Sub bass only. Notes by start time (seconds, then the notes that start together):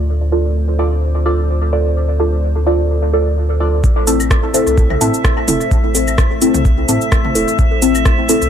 Already playing: D2
3.84 A1
4.67 C2
5.01 A2
5.48 E1
5.71 A1
6.54 C2
6.89 A2
7.35 E1
7.59 A1
8.42 C2